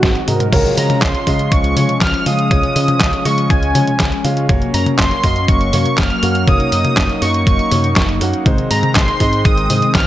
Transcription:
Already playing: analog synth pad D#3 F#3 G#3 C4 F#4, analog synth lead F#4
0.03 fingered electric bass G#1, kick, snare, closed hi-hat
0.15 closed hi-hat
0.28 fingered electric bass G#2, grand piano G#3 D#4 F#4 D#5, analog synth lead A#4, open hi-hat, high tom
0.40 closed hi-hat, mid tom
0.52 fingered electric bass C#2, analog synth pad F3 G#3 C#4, grand piano G#3 C#4 F4 C#5, kick, closed hi-hat, high tom, crash
0.65 closed hi-hat
0.77 fingered electric bass C#3, analog synth lead A#5, open hi-hat
0.90 closed hi-hat, high tom
1.02 fingered electric bass C#2, analog synth lead C6, kick, snare, clap, closed hi-hat
1.15 closed hi-hat
1.27 fingered electric bass C#3, grand piano G#3 C#4 F4 D#5, kick, open hi-hat
1.39 closed hi-hat
1.52 fingered electric bass C#2, analog synth lead C#6, kick, closed hi-hat
1.64 closed hi-hat
1.76 fingered electric bass C#3, grand piano G#3 C#4 F4 C#5, open hi-hat, high tom
1.89 closed hi-hat
2.01 fingered electric bass C#2, analog synth lead F6, kick, snare, clap, closed hi-hat
2.14 closed hi-hat
2.26 fingered electric bass C#3, grand piano G#3 C#4 F4 F5, analog synth lead D#6, open hi-hat
2.39 closed hi-hat
2.51 fingered electric bass C#2, grand piano G#3 C#4 F4 C#5, kick, closed hi-hat, high tom
2.63 closed hi-hat
2.76 fingered electric bass C#3, open hi-hat
2.88 closed hi-hat, high tom
3.01 fingered electric bass C#2, kick, snare, clap, closed hi-hat
3.13 closed hi-hat
3.25 fingered electric bass C#3, grand piano G#3 C#4 F4 D#5, analog synth lead C#6, open hi-hat
3.38 closed hi-hat
3.50 fingered electric bass C#2, analog synth lead G#5, kick, closed hi-hat
3.63 closed hi-hat
3.75 fingered electric bass C#3, grand piano G#3 C#4 F4 C#5, open hi-hat, high tom
3.88 closed hi-hat
4.00 fingered electric bass C#2, kick, snare, clap, closed hi-hat
4.12 closed hi-hat
4.24 fingered electric bass C#3, grand piano G#3 C#4 F4 F5, open hi-hat
4.37 closed hi-hat
4.49 fingered electric bass F#1, analog synth pad F#3 A#3, grand piano A#3 C#4 F#4 C#5, kick, closed hi-hat, high tom
4.62 closed hi-hat
4.74 fingered electric bass F#2, analog synth lead A#5, open hi-hat
4.86 closed hi-hat, high tom
4.99 fingered electric bass F#1, analog synth lead C6, kick, snare, clap, closed hi-hat
5.11 closed hi-hat
5.24 fingered electric bass F#2, grand piano A#3 C#4 F#4 D#5, kick, open hi-hat
5.36 closed hi-hat
5.48 fingered electric bass F#1, analog synth lead C#6, kick, closed hi-hat
5.61 closed hi-hat
5.73 fingered electric bass F#2, grand piano A#3 C#4 F#4 C#5, open hi-hat, high tom
5.86 closed hi-hat
5.98 fingered electric bass F#1, analog synth lead F6, kick, snare, clap, closed hi-hat
6.10 closed hi-hat
6.23 fingered electric bass F#2, grand piano A#3 C#4 F#4 F#5, open hi-hat
6.35 closed hi-hat
6.47 fingered electric bass F#1, grand piano A#3 C#4 F#4 C#5, analog synth pad D#4, analog synth lead D#6, kick, closed hi-hat, high tom
6.60 closed hi-hat
6.72 fingered electric bass F#2, open hi-hat
6.85 closed hi-hat, high tom
6.97 fingered electric bass F#1, kick, snare, clap, closed hi-hat
7.09 closed hi-hat
7.22 fingered electric bass F#2, grand piano A#3 C#4 F#4 D#5, analog synth lead C#6, open hi-hat
7.34 closed hi-hat
7.47 fingered electric bass F#1, analog synth lead C#6, kick, closed hi-hat
7.59 closed hi-hat
7.71 fingered electric bass F#2, grand piano A#3 C#4 F#4 C#5, open hi-hat, high tom
7.84 closed hi-hat
7.96 fingered electric bass F#1, kick, snare, clap, closed hi-hat
8.09 closed hi-hat
8.21 fingered electric bass F#2, grand piano A#3 C#4 F#4 F#5, open hi-hat
8.33 closed hi-hat
8.46 fingered electric bass G#1, analog synth pad D#3 G#3 C4, grand piano G#3 C4 D#4 C5, kick, closed hi-hat, high tom
8.58 closed hi-hat
8.71 fingered electric bass G#2, analog synth lead A#5, open hi-hat
8.83 closed hi-hat, high tom
8.95 fingered electric bass G#1, analog synth lead C6, kick, snare, clap, closed hi-hat
9.08 closed hi-hat
9.20 fingered electric bass G#2, grand piano G#3 C4 D#4 D#5, kick, open hi-hat
9.33 closed hi-hat
9.45 fingered electric bass G#1, analog synth lead D#6, kick, closed hi-hat
9.58 closed hi-hat
9.70 fingered electric bass G#2, grand piano G#3 C4 D#4 C5, open hi-hat, high tom
9.82 closed hi-hat
9.94 fingered electric bass G#1, analog synth lead F6, kick, snare, clap, closed hi-hat

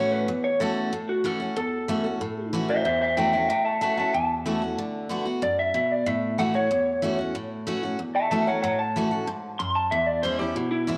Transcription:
Already playing: steel-string acoustic guitar A2 E3 A3 C#4 F#4, clean electric guitar C#5
0.12 clean electric guitar B4
0.28 steel-string acoustic guitar E2
0.44 clean electric guitar C#5
0.60 steel-string acoustic guitar E3 A3 C#4 F#4, clean electric guitar A4
0.93 steel-string acoustic guitar A2
1.09 clean electric guitar F#4
1.24 steel-string acoustic guitar E3 A3 C#4 F#4, clean electric guitar A4
1.40 steel-string acoustic guitar C#4 F#4
1.56 steel-string acoustic guitar E2, clean electric guitar A4
1.88 steel-string acoustic guitar E3 A3 C#4 F#4
2.04 steel-string acoustic guitar C#4 F#4
2.21 steel-string acoustic guitar A2
2.53 steel-string acoustic guitar E3 A3 C#4 F#4
2.68 steel-string acoustic guitar C#4 F#4, clean electric guitar C5 E5
2.85 steel-string acoustic guitar E2, clean electric guitar C5 E5
3.01 clean electric guitar C5 E5
3.17 steel-string acoustic guitar E3 A3 C#4 F#4, clean electric guitar E5 G5
3.33 steel-string acoustic guitar C#4 F#4, clean electric guitar E5 G5
3.49 steel-string acoustic guitar A2, clean electric guitar E5 G5
3.65 clean electric guitar E5 A5
3.81 steel-string acoustic guitar E3 A3 C#4 F#4, clean electric guitar E5 A5
3.97 steel-string acoustic guitar C#4 F#4, clean electric guitar E5 A5
4.14 steel-string acoustic guitar E2, clean electric guitar A5
4.46 steel-string acoustic guitar E3 A3 C#4 F#4
4.62 steel-string acoustic guitar C#4 F#4
4.78 steel-string acoustic guitar D3
5.09 steel-string acoustic guitar D3 A3 B3 F#4
5.25 steel-string acoustic guitar B3 F#4
5.42 steel-string acoustic guitar F#2, clean electric guitar D5
5.59 clean electric guitar E5
5.74 steel-string acoustic guitar B2, clean electric guitar E5
5.92 clean electric guitar D5
6.06 steel-string acoustic guitar A2, clean electric guitar E5
6.38 steel-string acoustic guitar E3 A3 C#4 F#4, clean electric guitar F#5
6.54 steel-string acoustic guitar C#4 F#4, clean electric guitar C#5
6.71 steel-string acoustic guitar E2
7.02 steel-string acoustic guitar E3 A3 C#4 F#4
7.19 steel-string acoustic guitar C#4 F#4
7.35 steel-string acoustic guitar A2
7.67 steel-string acoustic guitar E3 A3 C#4 F#4
7.83 steel-string acoustic guitar C#4 F#4
7.99 steel-string acoustic guitar E2
8.15 clean electric guitar E5 A5
8.31 steel-string acoustic guitar E3 A3 C#4 F#4, clean electric guitar E5 A5
8.47 steel-string acoustic guitar C#4 F#4, clean electric guitar C#5 F#5
8.62 steel-string acoustic guitar A2, clean electric guitar C#5 F#5
8.79 clean electric guitar A5
8.96 steel-string acoustic guitar E3 A3 C#4 F#4
9.11 steel-string acoustic guitar C#4 F#4
9.27 steel-string acoustic guitar G#2
9.59 steel-string acoustic guitar F#2, clean electric guitar C6
9.75 clean electric guitar A5
9.91 steel-string acoustic guitar E2, clean electric guitar E5
10.06 clean electric guitar D5
10.23 steel-string acoustic guitar E3 G#3 C#4 E4, clean electric guitar C5
10.39 steel-string acoustic guitar C#4 E4, clean electric guitar G4
10.55 steel-string acoustic guitar B2, clean electric guitar E4
10.71 clean electric guitar E4
10.87 steel-string acoustic guitar E3 G#3 C#4 E4

